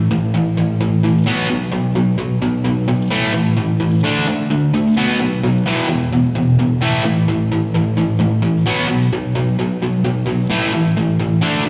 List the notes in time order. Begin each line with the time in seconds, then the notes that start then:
0.11 A2 E3
0.34 A2 E3
0.57 A2 E3
0.81 A2 E3
1.04 A2 E3
1.27 B2 F#3 B3
1.50 B2 F#3
1.72 B2 F#3
1.95 B2 F#3
2.18 B2 F#3
2.42 B2 F#3
2.64 B2 F#3
2.88 B2 F#3
3.11 A2 E3 A3
3.34 A2 E3
3.57 A2 E3
3.80 A2 E3
4.03 D3 A3 D4
4.27 D3 A3
4.50 D3 A3
4.74 D3 A3
4.97 B2 F#3 B3
5.20 B2 F#3
5.43 B2 F#3
5.66 E2 B2 E3
5.89 E2 B2
6.13 E2 B2
6.35 E2 B2
6.59 E2 B2
6.81 A2 E3 A3
7.04 A2 E3
7.28 A2 E3
7.52 A2 E3
7.74 A2 E3
7.97 A2 E3
8.20 A2 E3
8.43 A2 E3
8.66 B2 F#3 B3
8.88 B2 F#3
9.13 B2 F#3
9.35 B2 F#3
9.59 B2 F#3
9.82 B2 F#3
10.05 B2 F#3
10.27 B2 F#3
10.50 A2 E3 A3
10.73 A2 E3
10.97 A2 E3
11.20 A2 E3
11.42 D3 A3 D4
11.66 D3 A3